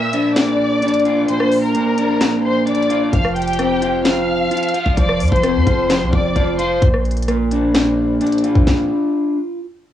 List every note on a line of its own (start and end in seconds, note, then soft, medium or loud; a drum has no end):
0.00 0.35 A#2 loud
0.00 1.05 A#3 medium
0.00 0.32 E5 medium
0.00 0.32 E6 medium
0.13 0.81 D4 medium
0.13 closed hi-hat medium
0.36 1.27 A#2 medium
0.36 1.24 D5 loud
0.36 1.25 D6 medium
0.36 snare loud
0.36 closed hi-hat medium
0.82 1.97 D4 medium
0.82 closed hi-hat medium
0.88 closed hi-hat medium
0.94 closed hi-hat medium
0.99 closed hi-hat medium
1.05 2.21 F4 medium
1.05 closed hi-hat medium
1.28 2.20 A#2 medium
1.28 1.61 C5 medium
1.28 1.61 C6 medium
1.28 closed hi-hat medium
1.40 cross-stick medium
1.51 open hi-hat medium
1.63 2.40 A#4 medium
1.63 2.40 A#5 medium
1.74 2.90 A#3 medium
1.74 closed hi-hat medium
1.98 2.65 D4 medium
1.98 closed hi-hat medium
2.21 3.13 A#2 medium
2.21 snare loud
2.21 closed hi-hat medium
2.44 2.63 C5 medium
2.44 2.64 C6 medium
2.66 3.13 D4 loud
2.66 3.10 D5 medium
2.66 3.11 D6 medium
2.66 closed hi-hat medium
2.75 closed hi-hat medium
2.82 closed hi-hat soft
2.90 3.13 F4 loud
2.90 closed hi-hat medium
3.13 4.47 F1 loud
3.13 4.04 F3 loud
3.13 3.33 F5 medium
3.13 3.33 F6 medium
3.13 kick loud
3.13 closed hi-hat medium
3.25 cross-stick medium
3.36 4.02 G4 medium
3.36 4.01 G5 medium
3.36 closed hi-hat soft
3.42 closed hi-hat medium
3.48 closed hi-hat medium
3.53 closed hi-hat medium
3.59 4.75 C4 medium
3.59 cross-stick medium
3.59 closed hi-hat medium
3.82 4.50 F4 medium
3.82 closed hi-hat medium
4.05 4.96 F3 medium
4.05 4.94 F5 medium
4.05 4.94 F6 medium
4.05 snare loud
4.05 closed hi-hat medium
4.51 5.66 F4 medium
4.51 closed hi-hat medium
4.57 closed hi-hat medium
4.63 closed hi-hat medium
4.69 closed hi-hat medium
4.74 5.90 F5 medium
4.74 closed hi-hat medium
4.86 4.97 F1 loud
4.86 kick medium
4.97 5.22 F1 loud
4.97 5.89 F3 loud
4.97 5.30 D5 loud
4.97 5.30 D6 medium
4.97 kick loud
4.97 closed hi-hat medium
5.09 cross-stick medium
5.21 5.32 F2 loud
5.21 closed hi-hat medium
5.21 open hi-hat medium
5.28 5.57 F1 loud
5.28 6.09 C5 medium
5.28 kick medium
5.28 closed hi-hat medium
5.33 6.09 C6 medium
5.33 closed hi-hat medium
5.44 6.59 C4 loud
5.44 cross-stick medium
5.44 closed hi-hat medium
5.55 5.66 F2 medium
5.67 6.03 F1 loud
5.67 6.35 F4 medium
5.67 kick loud
5.67 closed hi-hat medium
5.90 6.81 F3 medium
5.90 snare loud
5.90 closed hi-hat medium
6.01 6.12 C2 loud
6.13 6.35 F1 loud
6.13 6.56 D5 loud
6.13 6.57 D6 medium
6.13 kick loud
6.36 6.80 F1 loud
6.36 6.82 F4 loud
6.36 kick medium
6.36 closed hi-hat medium
6.59 6.79 C5 medium
6.59 6.82 F5 loud
6.59 6.79 C6 medium
6.59 closed hi-hat medium
6.81 8.17 A#1 loud
6.81 7.73 A#2 loud
6.81 kick loud
6.81 closed hi-hat medium
6.94 cross-stick medium
7.05 closed hi-hat soft
7.11 closed hi-hat medium
7.17 closed hi-hat medium
7.23 closed hi-hat medium
7.28 8.43 A#3 medium
7.28 cross-stick medium
7.28 closed hi-hat medium
7.51 8.20 D4 medium
7.51 closed hi-hat medium
7.74 8.90 A#2 medium
7.74 snare loud
7.74 closed hi-hat medium
8.21 9.36 D4 loud
8.21 closed hi-hat medium
8.26 closed hi-hat medium
8.32 closed hi-hat medium
8.38 closed hi-hat medium
8.44 9.59 F4 medium
8.44 closed hi-hat medium
8.55 8.66 A#1 loud
8.55 kick medium
8.67 kick loud
8.67 snare medium